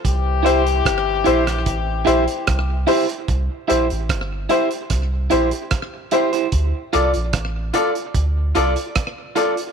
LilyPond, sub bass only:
\new Staff \with { instrumentName = "Sub bass" } { \clef bass \time 4/4 \key c \mixolydian \tempo 4 = 74 c,4 g,,8 bes,,8 a,,8 bes,,16 r16 c,8 r8 | c,16 r16 bes,,16 a,,16 g,,8 r8 c,8 bes,,16 r4 r16 | d,16 r16 c,16 bes,,16 a,,8 r8 d,8 c,16 r4 r16 | }